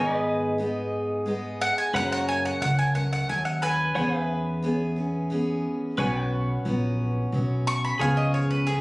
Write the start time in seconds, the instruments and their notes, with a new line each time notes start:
Already playing: steel-string acoustic guitar G#2 D#3 G#3 B3 D#4 G#4, upright bass G#2, pedal steel guitar A#4 C#5 G#5
0.11 pedal steel guitar B4
0.17 pedal steel guitar D#5
0.58 steel-string acoustic guitar G#3 B3 D#4 G#4
1.26 steel-string acoustic guitar G#3 B3 D#4 G#4
1.61 mandolin F#5
1.78 mandolin G#5
1.93 steel-string acoustic guitar F#2 C#3 F#3 A#3 C#4 A#4, upright bass F#2, pedal steel guitar B4 F#5 A#5, mandolin F#5
2.12 mandolin F#5
2.19 pedal steel guitar C#5
2.29 mandolin G#5
2.45 mandolin F#5
2.61 upright bass C#2, steel-string acoustic guitar F#3 A#3 C#4 A#4, mandolin F#5
2.79 mandolin G#5
2.95 steel-string acoustic guitar F#3 A#3 C#4 A#4, mandolin F#5
3.13 mandolin F#5
3.27 upright bass D#2, steel-string acoustic guitar F#3 C#4, mandolin G#5
3.45 mandolin F#5
3.62 mandolin B4 G#5
3.95 upright bass E2, steel-string acoustic guitar E3 B3 C#4 G#4, pedal steel guitar C#5 F#5 G#5
4.20 pedal steel guitar B4 E5
4.62 steel-string acoustic guitar E3 B3 C#4 G#4
4.96 steel-string acoustic guitar B3 C#4 G#4
5.30 steel-string acoustic guitar E3 B3 C#4 G#4
5.97 upright bass B1, steel-string acoustic guitar B2 F#3 B3 C#4 F#4, pedal steel guitar B4 C#5 G#5
6.25 pedal steel guitar F#5
6.65 upright bass A#1, steel-string acoustic guitar F#3 B3 C#4 F#4
7.32 upright bass B1, steel-string acoustic guitar F#3 B3 C#4 F#4
7.67 mandolin C#6
7.84 mandolin B5
7.99 upright bass C#2, steel-string acoustic guitar C#3 F3 B3 C#4 G#4, pedal steel guitar G#4 C#5 F5, mandolin G#5
8.17 mandolin D#5
8.34 mandolin C#5
8.51 mandolin B4
8.66 steel-string acoustic guitar F3 B3 C#4 G#4, mandolin G#4